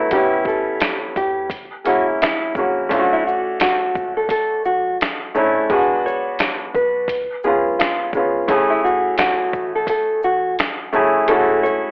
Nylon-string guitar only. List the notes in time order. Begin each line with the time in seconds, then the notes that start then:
0.13 G4
0.47 A4
1.17 G4
1.87 F#4
2.22 E4
3.13 E4
3.27 F#4
3.62 F#4
4.17 A4
4.31 A4
4.66 F#4
5.70 G#4
6.06 C#5
6.75 B4
7.44 G#4
7.79 F4
8.70 E4
8.84 F#4
9.19 F#4
9.75 A4
9.89 A4
10.24 F#4
11.29 A4
11.63 C#5